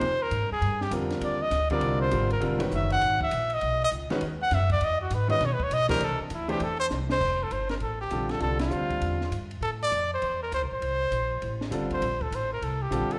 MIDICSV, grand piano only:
0, 0, Header, 1, 2, 480
1, 0, Start_track
1, 0, Tempo, 300150
1, 29, Time_signature, 4, 2, 24, 8
1, 21092, End_track
2, 0, Start_track
2, 0, Title_t, "Grand piano"
2, 0, Program_c, 0, 0
2, 1457, Note_on_c, 0, 50, 53
2, 1464, Note_on_c, 0, 55, 49
2, 1468, Note_on_c, 0, 60, 54
2, 1468, Note_on_c, 0, 65, 54
2, 1481, Note_on_c, 0, 70, 63
2, 2186, Note_off_c, 0, 50, 0
2, 2190, Note_off_c, 0, 55, 0
2, 2192, Note_off_c, 0, 60, 0
2, 2192, Note_off_c, 0, 65, 0
2, 2198, Note_off_c, 0, 70, 0
2, 2729, Note_on_c, 0, 50, 76
2, 2737, Note_on_c, 0, 55, 67
2, 2740, Note_on_c, 0, 60, 70
2, 2747, Note_on_c, 0, 65, 69
2, 2755, Note_on_c, 0, 70, 75
2, 3347, Note_off_c, 0, 50, 0
2, 3351, Note_off_c, 0, 60, 0
2, 3356, Note_off_c, 0, 55, 0
2, 3356, Note_off_c, 0, 65, 0
2, 3369, Note_off_c, 0, 70, 0
2, 3371, Note_on_c, 0, 50, 63
2, 3375, Note_on_c, 0, 60, 58
2, 3380, Note_on_c, 0, 55, 62
2, 3380, Note_on_c, 0, 65, 60
2, 3394, Note_on_c, 0, 70, 68
2, 3653, Note_off_c, 0, 50, 0
2, 3655, Note_off_c, 0, 60, 0
2, 3658, Note_off_c, 0, 55, 0
2, 3658, Note_off_c, 0, 65, 0
2, 3665, Note_off_c, 0, 70, 0
2, 3846, Note_on_c, 0, 50, 68
2, 3855, Note_on_c, 0, 55, 61
2, 3857, Note_on_c, 0, 65, 66
2, 3861, Note_on_c, 0, 60, 60
2, 3872, Note_on_c, 0, 70, 77
2, 4130, Note_off_c, 0, 50, 0
2, 4135, Note_off_c, 0, 55, 0
2, 4136, Note_off_c, 0, 65, 0
2, 4138, Note_off_c, 0, 60, 0
2, 4139, Note_on_c, 0, 51, 73
2, 4140, Note_on_c, 0, 56, 61
2, 4144, Note_off_c, 0, 70, 0
2, 4155, Note_on_c, 0, 61, 66
2, 4156, Note_on_c, 0, 66, 69
2, 4165, Note_on_c, 0, 71, 76
2, 5188, Note_off_c, 0, 51, 0
2, 5188, Note_off_c, 0, 56, 0
2, 5195, Note_off_c, 0, 61, 0
2, 5196, Note_off_c, 0, 66, 0
2, 5201, Note_off_c, 0, 71, 0
2, 6560, Note_on_c, 0, 51, 86
2, 6564, Note_on_c, 0, 56, 79
2, 6574, Note_on_c, 0, 61, 76
2, 6578, Note_on_c, 0, 66, 78
2, 6580, Note_on_c, 0, 71, 91
2, 6726, Note_off_c, 0, 51, 0
2, 6728, Note_off_c, 0, 56, 0
2, 6734, Note_off_c, 0, 61, 0
2, 6735, Note_off_c, 0, 66, 0
2, 6736, Note_off_c, 0, 71, 0
2, 8447, Note_on_c, 0, 51, 70
2, 8458, Note_on_c, 0, 56, 64
2, 8467, Note_on_c, 0, 61, 62
2, 8469, Note_on_c, 0, 66, 63
2, 8474, Note_on_c, 0, 71, 75
2, 8627, Note_off_c, 0, 51, 0
2, 8632, Note_off_c, 0, 56, 0
2, 8637, Note_off_c, 0, 61, 0
2, 8638, Note_off_c, 0, 66, 0
2, 8641, Note_off_c, 0, 71, 0
2, 9413, Note_on_c, 0, 52, 78
2, 9415, Note_on_c, 0, 57, 75
2, 9422, Note_on_c, 0, 62, 76
2, 9431, Note_on_c, 0, 67, 73
2, 9432, Note_on_c, 0, 72, 89
2, 9589, Note_off_c, 0, 52, 0
2, 9590, Note_off_c, 0, 57, 0
2, 9593, Note_off_c, 0, 62, 0
2, 9598, Note_off_c, 0, 67, 0
2, 9598, Note_off_c, 0, 72, 0
2, 10367, Note_on_c, 0, 52, 79
2, 10368, Note_on_c, 0, 57, 64
2, 10376, Note_on_c, 0, 62, 67
2, 10377, Note_on_c, 0, 67, 67
2, 10386, Note_on_c, 0, 72, 78
2, 10544, Note_off_c, 0, 52, 0
2, 10545, Note_off_c, 0, 57, 0
2, 10549, Note_off_c, 0, 62, 0
2, 10550, Note_off_c, 0, 67, 0
2, 10554, Note_off_c, 0, 72, 0
2, 12969, Note_on_c, 0, 50, 55
2, 12974, Note_on_c, 0, 55, 48
2, 12984, Note_on_c, 0, 60, 47
2, 12985, Note_on_c, 0, 65, 45
2, 12993, Note_on_c, 0, 69, 58
2, 13418, Note_off_c, 0, 50, 0
2, 13425, Note_off_c, 0, 55, 0
2, 13426, Note_off_c, 0, 60, 0
2, 13437, Note_off_c, 0, 69, 0
2, 13440, Note_off_c, 0, 65, 0
2, 13442, Note_on_c, 0, 50, 53
2, 13449, Note_on_c, 0, 55, 45
2, 13450, Note_on_c, 0, 60, 46
2, 13461, Note_on_c, 0, 69, 56
2, 13464, Note_on_c, 0, 65, 48
2, 13721, Note_off_c, 0, 50, 0
2, 13725, Note_off_c, 0, 55, 0
2, 13725, Note_off_c, 0, 60, 0
2, 13731, Note_off_c, 0, 69, 0
2, 13732, Note_off_c, 0, 65, 0
2, 13908, Note_on_c, 0, 50, 52
2, 13915, Note_on_c, 0, 55, 50
2, 13919, Note_on_c, 0, 60, 46
2, 13930, Note_on_c, 0, 65, 50
2, 13934, Note_on_c, 0, 72, 57
2, 14646, Note_off_c, 0, 50, 0
2, 14649, Note_off_c, 0, 55, 0
2, 14651, Note_off_c, 0, 60, 0
2, 14657, Note_off_c, 0, 65, 0
2, 14658, Note_off_c, 0, 72, 0
2, 18727, Note_on_c, 0, 50, 61
2, 18728, Note_on_c, 0, 55, 53
2, 18746, Note_on_c, 0, 60, 54
2, 18750, Note_on_c, 0, 65, 57
2, 18756, Note_on_c, 0, 69, 71
2, 19216, Note_off_c, 0, 50, 0
2, 19217, Note_off_c, 0, 55, 0
2, 19226, Note_off_c, 0, 60, 0
2, 19228, Note_off_c, 0, 65, 0
2, 19231, Note_off_c, 0, 69, 0
2, 20642, Note_on_c, 0, 50, 65
2, 20647, Note_on_c, 0, 55, 59
2, 20654, Note_on_c, 0, 60, 62
2, 20661, Note_on_c, 0, 65, 62
2, 20674, Note_on_c, 0, 69, 73
2, 21092, Note_off_c, 0, 50, 0
2, 21092, Note_off_c, 0, 55, 0
2, 21092, Note_off_c, 0, 60, 0
2, 21092, Note_off_c, 0, 65, 0
2, 21092, Note_off_c, 0, 69, 0
2, 21092, End_track
0, 0, End_of_file